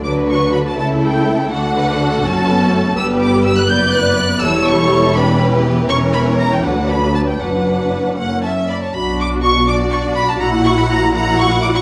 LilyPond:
<<
  \new Staff \with { instrumentName = "Violin section" } { \time 6/8 \key b \minor \tempo 4. = 82 d'''8 cis'''8 b''16 a''16 a''8 g''4 | fis''4. a''4. | e'''8 d'''8 e'''16 fis'''16 g'''8 fis'''4 | e'''8 cis'''4 b''8 r4 |
cis'''8 b''8 bes''16 g''16 fis''8 b''8 a''16 g''16 | fis''4. fis''8 a''8 b''16 a''16 | b''8 d'''8 cis'''8 d'''8 cis'''8 b''16 a''16 | ais''8 cis'''16 b''16 ais''8 ais''8 cis'''8 d'''16 cis'''16 | }
  \new Staff \with { instrumentName = "Violin section" } { \time 6/8 \key b \minor << { b'4. a'4. | a'8 b'8 a'2 | b'4. b'4. | a'4. g'4. |
cis''4. b'4. | b'4. fis''8 e''8 d''16 cis''16 | r4. d''4. | fis''4. fis''4. | } \\ { d'4. e'4. | fis'2. | g'4. d''4. | cis''4. b'4. |
bes'4. b'4. | b'4. r4. | r2. | r2. | } >> }
  \new Staff \with { instrumentName = "Viola section" } { \time 6/8 \key b \minor << { fis'4. e'4. | d'4. cis'4. | b2. | e'4. d'8 cis'8 b8 |
cis'4. d'4. | d'4. cis'4 r8 | fis'4. fis'4. | fis'4. fis'4. | } \\ { fis4. a4. | a4. fis8 b8 a8 | g4. b4. | g4. e4.~ |
e4. fis4. | fis4. ais4 r8 | d'4. d'4. | e'4. e'4. | } >> }
  \new Staff \with { instrumentName = "Cello section" } { \clef bass \time 6/8 \key b \minor d4. cis4. | d4. fis,4. | g,4. fis,4. | e,2. |
e,4. d,4. | fis,4. fis,4 r8 | b,2. | ais,2. | }
  \new Staff \with { instrumentName = "Double bass section" } { \clef bass \time 6/8 \key b \minor d,4. cis,4. | d,4. fis,,4. | g,,4. fis,,4. | e,,2. |
e,,4. d,4. | fis,,4. fis,,4 r8 | b,,2. | ais,,2. | }
>>